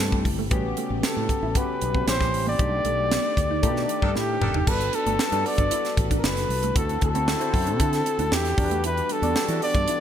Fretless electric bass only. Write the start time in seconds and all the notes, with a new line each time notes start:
0.00 G2
0.25 G1
0.51 A1
0.90 A1
1.17 A2
1.42 A1
1.82 B1
2.07 A#1
2.33 A1
2.59 B1
2.85 B1
3.37 D2
3.63 B2
4.02 G2
4.15 A2
4.41 F1
4.67 G1
5.06 G1
5.32 G2
5.58 G1
5.97 A1
6.23 F#1
6.49 C2
6.76 D2
7.02 D2
7.53 F#2
7.80 D3
8.19 D2
8.31 E2
8.58 E2
9.22 E2
9.36 muted fretless electric bass stroke
9.48 E3
9.75 G2